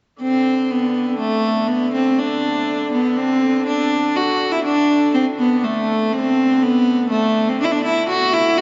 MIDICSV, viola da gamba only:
0, 0, Header, 1, 2, 480
1, 0, Start_track
1, 0, Tempo, 491803
1, 214, Time_signature, 3, 2, 24, 8
1, 8403, End_track
2, 0, Start_track
2, 0, Title_t, "Viola da gamba"
2, 0, Program_c, 0, 42
2, 207, Note_on_c, 0, 60, 74
2, 691, Note_on_c, 0, 59, 72
2, 706, Note_off_c, 0, 60, 0
2, 1163, Note_off_c, 0, 59, 0
2, 1169, Note_on_c, 0, 57, 72
2, 1640, Note_on_c, 0, 59, 76
2, 1654, Note_off_c, 0, 57, 0
2, 1884, Note_off_c, 0, 59, 0
2, 1890, Note_on_c, 0, 60, 71
2, 2132, Note_on_c, 0, 62, 79
2, 2147, Note_off_c, 0, 60, 0
2, 2843, Note_off_c, 0, 62, 0
2, 2849, Note_on_c, 0, 59, 71
2, 3092, Note_on_c, 0, 60, 80
2, 3107, Note_off_c, 0, 59, 0
2, 3571, Note_off_c, 0, 60, 0
2, 3576, Note_on_c, 0, 62, 80
2, 4063, Note_on_c, 0, 66, 82
2, 4078, Note_off_c, 0, 62, 0
2, 4407, Note_on_c, 0, 64, 76
2, 4421, Note_off_c, 0, 66, 0
2, 4528, Note_off_c, 0, 64, 0
2, 4533, Note_on_c, 0, 62, 84
2, 4980, Note_off_c, 0, 62, 0
2, 5017, Note_on_c, 0, 60, 73
2, 5124, Note_off_c, 0, 60, 0
2, 5260, Note_on_c, 0, 59, 80
2, 5502, Note_on_c, 0, 57, 73
2, 5517, Note_off_c, 0, 59, 0
2, 5981, Note_on_c, 0, 60, 83
2, 5995, Note_off_c, 0, 57, 0
2, 6463, Note_on_c, 0, 59, 84
2, 6478, Note_off_c, 0, 60, 0
2, 6923, Note_off_c, 0, 59, 0
2, 6929, Note_on_c, 0, 57, 73
2, 7309, Note_on_c, 0, 60, 77
2, 7324, Note_off_c, 0, 57, 0
2, 7416, Note_off_c, 0, 60, 0
2, 7421, Note_on_c, 0, 62, 85
2, 7459, Note_on_c, 0, 64, 70
2, 7473, Note_off_c, 0, 62, 0
2, 7530, Note_on_c, 0, 62, 87
2, 7545, Note_off_c, 0, 64, 0
2, 7652, Note_off_c, 0, 62, 0
2, 7661, Note_on_c, 0, 64, 80
2, 7880, Note_off_c, 0, 64, 0
2, 7895, Note_on_c, 0, 66, 88
2, 8133, Note_on_c, 0, 64, 89
2, 8147, Note_off_c, 0, 66, 0
2, 8369, Note_on_c, 0, 66, 84
2, 8383, Note_off_c, 0, 64, 0
2, 8403, Note_off_c, 0, 66, 0
2, 8403, End_track
0, 0, End_of_file